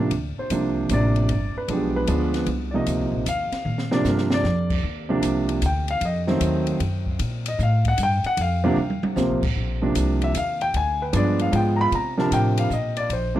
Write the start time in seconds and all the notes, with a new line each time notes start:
0.00 F3 A#3 D4
0.11 D2, kick, ride
0.38 C5, muted upright bass stroke
0.50 C2 C3 F3 A#3 D4, kick, hi-hat pedal, ride
0.89 A1 C3 F3 A#3 D4, kick, hi-hat pedal, ride
0.93 D5
1.16 ride
1.29 G1, kick, ride
1.55 B4, muted upright bass stroke
1.68 B1 F3 G#3 B3 D4, kick, ride
1.73 G4
1.96 B4
2.07 D2 F3 G#3 B3 D4, kick, hi-hat pedal, ride
2.34 snare, ride
2.46 C2, kick, ride
2.71 C3 F3 A#3 D#4 D5
2.76 D#5
2.86 D2, kick, hi-hat pedal, ride
2.99 C2
3.12 A#1
3.26 D#2 F5, kick, hi-hat pedal, ride
3.52 muted upright bass stroke, snare, ride
3.65 A#2, mid tom
3.78 snare
3.91 C3 F3 A#3 D4 D5, snare
4.04 G2 A#4, snare, hi-hat pedal
4.18 snare
4.30 D5, snare
4.44 F2, snare
4.70 kick, crash
4.83 D#2, kick
5.09 C3 F3 A#3 D4
5.22 C2, kick, hi-hat pedal, ride
5.49 ride
5.62 D2, kick, hi-hat pedal, ride
5.66 G5
5.88 F5, ride
6.01 F2, kick, ride
6.05 D#5
6.27 D#3 F#3 A3 C4, snare
6.40 D#2, kick, hi-hat pedal, ride
6.67 ride
6.80 F#2, kick, ride
7.06 kick
7.19 A#2, kick, ride
7.46 D#5, ride
7.59 A2, kick, hi-hat pedal
7.63 F5
7.85 F#5, kick, ride
7.98 G2, kick, hi-hat pedal, ride
8.03 G5
8.23 F#5, muted upright bass stroke, ride
8.37 F2, kick, ride
8.41 F5
8.64 C3 F3 A#3 D4
8.76 D#2, high tom
8.90 high tom
9.03 muted upright bass stroke, high tom
9.16 D2 C3 F3 A#3 C4, snare, hi-hat pedal
9.29 A#1
9.43 A1, kick, crash
9.56 A#1, kick
9.82 C3 F3 A#3 D4
9.95 C2, kick, hi-hat pedal, ride
10.22 E5, ride
10.34 D#2 F5, kick, hi-hat pedal, ride
10.61 G5, ride
10.74 D2 G#5, kick, ride
11.02 B4
11.13 G2 F3 G#3 B3 D4 D5, kick, hi-hat pedal, ride
11.39 F5, ride
11.52 G#2 F3 G#3 B3 F4 G5, kick, ride
11.76 A#5
11.81 B5
11.92 C3 A#5, kick, ride
12.18 C3 F3 D4 A#4 A5, snare
12.31 A2 G5, kick, hi-hat pedal, ride
12.57 F5, ride
12.70 A#2 D#5, kick, hi-hat pedal
12.96 D5, ride
13.09 A#1 C5, kick, ride
13.35 C3 F3 A#3 D4